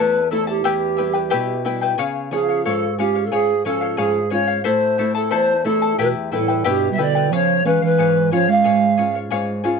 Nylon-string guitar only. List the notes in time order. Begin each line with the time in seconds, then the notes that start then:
Already playing: A3 C4 E4
0.00 E2
0.31 A3 C4 E4
0.65 E2
0.99 G3 B3 E4
1.33 B2
1.65 G3 B3 E4
1.99 C#3
2.31 F3 C#4 F4
2.66 G#2
2.99 G#3 C#4 F4
3.32 G#2
3.65 F3 C#4 F4
3.98 G#2
4.31 G#3 C#4 F4
4.65 A2
4.99 A3 C4 E4
5.32 E2
5.65 A3 C4 E4
5.99 E2
6.32 G3 B3 E4
6.66 B2
6.99 G3 B3 E4
7.32 C#3
7.65 G#3 C#4 F5
7.98 G#2
8.31 G#3 C#4 F4
8.65 G#2
8.98 G#3 C#4 F4
9.31 G#2
9.64 G#3 C#4 F4